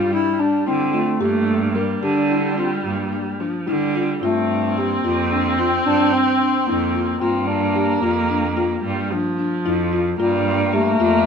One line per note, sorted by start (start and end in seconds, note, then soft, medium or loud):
0.00 0.10 G2 medium
0.00 0.90 G3 medium
0.00 0.13 F4 loud
0.13 0.32 D4 medium
0.13 0.42 E4 loud
0.39 0.59 D4 medium
0.39 0.66 D4 medium
0.67 1.17 D3 medium
0.67 1.22 C4 medium
0.67 0.86 E4 medium
0.93 1.76 A3 loud
0.93 1.13 F4 medium
1.21 1.99 G2 loud
1.21 2.03 A#3 medium
1.21 1.60 G4 medium
1.75 3.41 G3 medium
1.75 1.95 A#4 medium
2.02 2.80 D3 medium
2.02 2.54 D4 medium
2.02 2.22 G4 medium
2.30 2.50 E4 medium
2.58 2.70 C4 medium
2.58 2.97 F4 medium
2.85 3.10 G2 medium
2.85 3.65 A#3 medium
3.13 3.32 D4 medium
3.40 3.68 F3 medium
3.40 3.60 D4 medium
3.66 4.19 D3 medium
3.66 4.23 G3 medium
3.66 3.87 E4 medium
3.95 4.15 F4 medium
4.21 5.00 G2 medium
4.21 4.80 A3 medium
4.21 7.20 C4 loud
4.21 4.62 F4 medium
4.78 5.61 A#3 medium
4.78 4.97 G4 medium
5.05 5.83 F2 medium
5.05 5.24 F4 medium
5.32 5.52 D4 medium
5.59 5.86 C4 medium
5.59 5.99 F4 medium
5.86 6.12 G2 medium
5.86 6.14 D4 loud
6.13 6.69 C4 loud
6.13 6.33 D4 medium
6.41 6.61 D4 medium
6.67 7.18 F2 medium
6.67 7.22 A#3 medium
6.67 6.88 E4 medium
6.95 7.15 F4 medium
7.20 7.99 G2 medium
7.20 8.80 A#3 medium
7.20 7.49 C4 medium
7.20 7.61 F4 medium
7.47 8.03 D4 loud
7.75 7.95 G4 medium
8.02 8.80 F2 medium
8.02 9.65 A#3 medium
8.02 8.23 F4 medium
8.30 8.50 D4 medium
8.57 8.96 F4 medium
8.83 9.09 G2 medium
8.83 9.12 G3 medium
9.11 10.19 F3 loud
9.11 9.32 D4 medium
9.39 9.58 D4 medium
9.65 10.16 F2 medium
9.65 9.85 E4 medium
9.93 10.12 F4 medium
10.20 10.97 G2 loud
10.20 10.76 G3 medium
10.20 11.26 A#3 loud
10.20 10.59 F4 medium
10.73 11.26 A3 loud
10.73 10.93 G4 medium
11.00 11.26 F2 medium
11.00 11.20 F4 medium